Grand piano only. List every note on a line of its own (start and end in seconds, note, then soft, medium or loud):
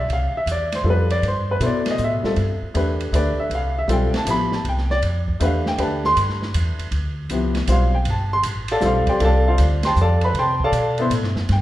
0.00 0.10 E5 medium
0.13 0.36 F5 medium
0.37 0.49 E5 medium
0.52 0.74 D5 medium
0.75 0.86 C5 medium
0.84 1.07 G3 medium
0.84 1.08 C4 soft
0.84 1.08 F4 medium
0.84 1.08 A4 medium
0.90 1.12 B4 medium
1.11 1.23 D5 medium
1.28 1.50 C5 medium
1.51 1.62 B4 medium
1.60 2.19 B2 medium
1.60 2.20 E4 medium
1.60 2.20 A4 medium
1.60 2.20 C5 medium
1.66 1.88 D5 medium
1.90 2.01 D#5 medium
2.04 2.37 E5 medium
2.23 2.35 G3 medium
2.23 2.36 C4 medium
2.23 2.36 F4 medium
2.23 2.36 A4 medium
2.74 3.11 A3 medium
2.74 3.12 D4 medium
2.74 3.12 G4 medium
2.74 3.13 B4 medium
3.13 3.71 A3 medium
3.13 3.71 D4 soft
3.13 3.71 G4 medium
3.13 3.72 B4 medium
3.13 3.39 D5 medium
3.40 3.51 E5 medium
3.55 3.77 F5 medium
3.78 3.90 E5 medium
3.88 4.11 G3 medium
3.88 4.12 C4 medium
3.88 4.12 F4 medium
3.88 4.12 A4 medium
3.92 4.15 G5 medium
4.17 4.28 A5 medium
4.25 4.49 F3 medium
4.25 4.49 B3 medium
4.25 4.49 E4 medium
4.25 4.50 G4 medium
4.31 4.53 B5 loud
4.54 4.65 A5 medium
4.69 4.91 G5 medium
4.91 4.98 D5 medium
5.40 5.63 A3 medium
5.40 5.63 D4 medium
5.40 5.64 G4 medium
5.40 5.64 B4 medium
5.45 5.67 F5 medium
5.68 5.79 G5 medium
5.78 6.84 A3 medium
5.78 6.85 D4 medium
5.78 6.85 G4 medium
5.78 6.85 B4 medium
5.82 6.05 A5 medium
6.06 6.17 C6 loud
7.30 7.53 F3 medium
7.30 7.53 B3 medium
7.30 7.54 E4 medium
7.30 7.54 G4 medium
7.68 7.91 G3 medium
7.68 7.91 C4 medium
7.68 7.91 F4 medium
7.68 7.91 C5 medium
7.72 7.95 F5 medium
7.94 8.06 G5 medium
8.10 8.33 A5 medium
8.33 8.40 C6 loud
8.71 8.80 A4 medium
8.71 8.83 D5 medium
8.71 8.83 F5 medium
8.71 8.83 A5 medium
8.80 9.18 G3 medium
8.80 9.19 C4 medium
8.80 8.84 F4 medium
8.80 9.20 A4 medium
8.85 9.08 F4 medium
8.85 9.08 C5 medium
8.85 9.08 D5 medium
8.85 9.08 F5 medium
9.09 9.21 G4 medium
9.09 9.21 C5 medium
9.09 9.21 D5 medium
9.09 9.21 G5 medium
9.20 10.26 G3 medium
9.20 10.27 C4 medium
9.20 9.47 F4 medium
9.20 9.23 A4 medium
9.24 9.47 A4 medium
9.24 9.47 D5 medium
9.24 9.46 F5 medium
9.24 9.47 A5 loud
9.48 9.82 F4 medium
9.48 9.83 C5 medium
9.48 9.83 D5 medium
9.48 9.82 F5 medium
9.85 9.97 C5 medium
9.85 9.97 G5 medium
9.85 9.97 A5 medium
9.85 9.97 C6 loud
10.01 10.24 A4 medium
10.01 10.23 D5 medium
10.01 10.24 F5 medium
10.01 10.24 A5 medium
10.24 10.36 B4 medium
10.24 10.35 B5 medium
10.39 10.61 C5 medium
10.39 10.61 G5 medium
10.39 10.61 A5 medium
10.39 10.61 C6 medium
10.64 10.98 A4 medium
10.64 10.98 D5 medium
10.64 10.98 F5 medium
10.64 10.98 A5 loud
10.99 11.10 B3 medium
10.99 11.10 E4 medium
10.99 11.10 A4 medium
10.99 11.11 C5 medium
11.52 11.62 G5 medium